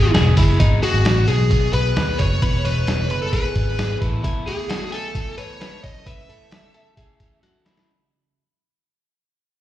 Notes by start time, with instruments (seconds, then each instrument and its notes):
Already playing: picked electric bass G#1, overdriven electric guitar D#3 G#3 B3 G#4, lead electric guitar G#4, clean electric guitar G#4
0.14 picked electric bass E1, overdriven electric guitar D#3 G#3 B3 G#4, clean electric guitar G#4, snare, ride
0.36 picked electric bass F#1, overdriven electric guitar D#3 G#3 B3 G#4, clean electric guitar E4, kick, open hi-hat, ride
0.60 picked electric bass G#1, overdriven electric guitar F#3 B3 D#4 G#4, clean electric guitar D#4, kick, closed hi-hat
0.82 overdriven electric guitar F#3 B3 D#4 G#4, lead electric guitar F#4, clean electric guitar G#4, closed hi-hat
0.94 picked electric bass G#1
1.05 picked electric bass A1, clean electric guitar F#4, snare, closed hi-hat
1.16 overdriven electric guitar F#3 B3 D#4 G#4
1.28 picked electric bass B1, lead electric guitar G#4, clean electric guitar G#4, snare, closed hi-hat
1.50 overdriven electric guitar F#3 B3 D#4 G#4, kick, closed hi-hat
1.73 picked electric bass B1, overdriven electric guitar F#3 B3 D#4 G#4, lead electric guitar B4, clean electric guitar B4, closed hi-hat
1.96 picked electric bass D#2, clean electric guitar B4, snare, closed hi-hat
2.08 overdriven electric guitar F#3 B3 D#4 G#4
2.18 picked electric bass F#1, lead electric guitar C#5, clean electric guitar C#5, kick, closed hi-hat
2.41 picked electric bass E1, overdriven electric guitar E3 B3 D#4 G#4, clean electric guitar B4, kick, closed hi-hat
2.64 picked electric bass E1, overdriven electric guitar E3 B3 D#4 G#4, lead electric guitar B4, clean electric guitar C#5, closed hi-hat
2.87 picked electric bass E1, snare, closed hi-hat
2.98 overdriven electric guitar E3 B3 D#4 G#4
3.10 picked electric bass F#1, clean electric guitar B4, closed hi-hat
3.22 lead electric guitar A4
3.33 overdriven electric guitar E3 B3 D#4 G#4, clean electric guitar G#4, lead electric guitar B4, kick, closed hi-hat
3.55 picked electric bass G#1, overdriven electric guitar E3 B3 D#4 G#4, kick, closed hi-hat
3.78 clean electric guitar G#4, snare, closed hi-hat
3.89 overdriven electric guitar E3 B3 D#4 G#4
4.01 picked electric bass A1, overdriven electric guitar A2 E3 A3 B3 A4, clean electric guitar E4, kick, closed hi-hat
4.24 clean electric guitar E4, kick, closed hi-hat
4.46 overdriven electric guitar E3 A3 B3, clean electric guitar G#4, lead electric guitar G#4, closed hi-hat
4.69 clean electric guitar F#4, snare, closed hi-hat
4.81 overdriven electric guitar A3 B3 A4
4.92 lead electric guitar A4, clean electric guitar G#5, snare, closed hi-hat
5.15 overdriven electric guitar E3 A3 B3 A4, kick, closed hi-hat
5.37 overdriven electric guitar E3 A3 B3 A4, clean electric guitar B4, lead electric guitar C#5, closed hi-hat
5.61 clean electric guitar B4, snare, closed hi-hat
5.72 overdriven electric guitar A3 B3 A4
5.83 overdriven electric guitar F#2 C#3 E3 A3 C#4 A4, clean electric guitar C#5, lead electric guitar D#5, kick, closed hi-hat
6.06 clean electric guitar B4, lead electric guitar E5, kick, closed hi-hat
6.29 overdriven electric guitar E3 A3 C#4 A4, clean electric guitar A4, closed hi-hat
6.51 snare, closed hi-hat
6.63 overdriven electric guitar E3 A3 C#4 A4
6.74 clean electric guitar A4, closed hi-hat
6.97 overdriven electric guitar E3 A3 C#4 A4, clean electric guitar G#4, kick, closed hi-hat
7.20 overdriven electric guitar E3 A3 C#4 A4, kick, closed hi-hat
7.43 clean electric guitar F#4, snare, closed hi-hat
7.54 overdriven electric guitar E3 A3 C#4 A4
7.65 clean electric guitar E4, snare, closed hi-hat
7.78 snare